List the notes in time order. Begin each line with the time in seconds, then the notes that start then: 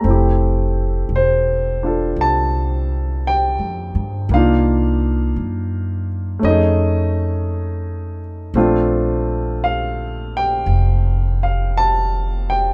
Already playing: A#5
0.01 F1 A3 C4
0.08 E4 G4
1.09 E1
1.16 C5
1.83 D4 F4 A4
2.16 C2
2.21 A5
3.27 G5
3.59 F2
3.95 G2
4.29 C2 A#3 D4
4.34 D#4 F4 F5
5.36 F#2
6.39 F2 A3 C#4
6.45 D#4 D#5
6.50 G#4
8.54 A#1 A3 C4 D4 F4
9.64 F5
10.37 G5
10.66 F1
11.43 F5
11.77 A5
12.50 G5